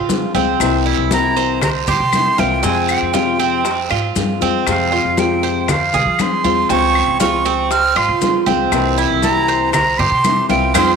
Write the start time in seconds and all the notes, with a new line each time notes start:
Already playing: C#3 F4
0.09 F3 G#3 C4 F4, high bongo, low bongo, high conga, short guiro, maracas
0.35 C#2 F3 G#3 C4 F4, high bongo, high conga, short guiro, maracas
0.60 C2 C3 E3 A#3 C4 E4, high bongo, high conga, long guiro, claves, maracas
0.86 E4, high conga
0.98 C2
1.11 C3 E3 A#3 C4 E4 A#5, high bongo, high conga, short guiro, maracas
1.36 C5, high bongo, short guiro, maracas
1.61 A#5, muted nylon-string guitar stroke, high bongo, high conga, low conga, long guiro, claves, maracas
1.87 G2 G4 C6, high bongo, high conga, low conga, maracas
2.00 C3
2.13 E3 A#3 C4 E4, high bongo, low bongo, high conga, short guiro, claves, maracas
2.38 C2 E3 A#3 C4 E4 F4 G5, high bongo, high conga, short guiro, maracas
2.63 F2 C3 F3 G#3 C4 F4 G#5, high bongo, high conga, long guiro, maracas
2.89 G5, high conga, claves, maracas
3.02 F2
3.14 C3 F3 G#3 C4 F4, high bongo, high conga, short guiro, maracas
3.40 C4, high bongo, high conga, short guiro, maracas
3.65 muted nylon-string guitar stroke, high bongo, high conga, long guiro, maracas
3.90 G#2 F4, high bongo, high conga, claves
4.16 G2 F3 G#3 C4 F4, high bongo, low bongo, high conga, short guiro, maracas
4.41 F2 F3 G#3 C4 F4, high bongo, high conga, short guiro, maracas
4.67 F2 C3 F3 G#3 C4 F4 F5, high bongo, high conga, long guiro, claves, maracas
4.92 F4, high conga
5.05 F2
5.17 C3 F3 G#3 C4 F4 G5, high bongo, high conga, short guiro, maracas
5.43 C5, high bongo, short guiro, maracas
5.68 F5, muted nylon-string guitar stroke, high bongo, high conga, low conga, long guiro, claves, maracas
5.93 C2 G#4, high bongo, high conga, low conga, maracas
6.06 F3
6.19 F3 G#3 C4 F4 C6, high bongo, low bongo, high conga, short guiro, claves, maracas
6.44 E2 F3 G#3 C4 F4, high bongo, high conga, short guiro, maracas
6.69 C#2 C#3 F3 G#3 C4 F4 C#6, high bongo, high conga, long guiro, maracas
6.95 high conga, claves
7.08 C#2
7.20 C#3 F3 G#3 C4 F4 C#6, high bongo, high conga, short guiro, maracas
7.45 C4, high bongo, high conga, short guiro, maracas
7.71 F6, muted nylon-string guitar stroke, high bongo, high conga, long guiro, maracas
7.96 G#1 F4 C6, high bongo, high conga, claves
8.09 C#3
8.21 F3 G#3 C4 F4, high bongo, low bongo, high conga, short guiro, maracas
8.46 C#2 F3 G#3 C4 F4, high bongo, high conga, short guiro, maracas
8.72 C2 C3 E3 A#3 C4 E4, high bongo, high conga, long guiro, claves, maracas
8.98 E4, high conga, maracas
9.10 C2
9.22 C3 E3 A#3 C4 E4 A#5, high bongo, high conga, short guiro, maracas
9.48 C5, high bongo, short guiro, maracas
9.73 A#5, muted nylon-string guitar stroke, high bongo, high conga, low conga, long guiro, claves, maracas
9.98 G2 G4 C6, high bongo, high conga, low conga
10.11 C3
10.24 E3 A#3 C4 E4, high bongo, low bongo, high conga, short guiro, claves, maracas
10.49 C2 E3 A#3 C4 E4 F4 G5, high bongo, high conga, short guiro, maracas
10.74 F2 F3 G#3 C4 F4 G#4 C6, low bongo, high conga, long guiro, claves, maracas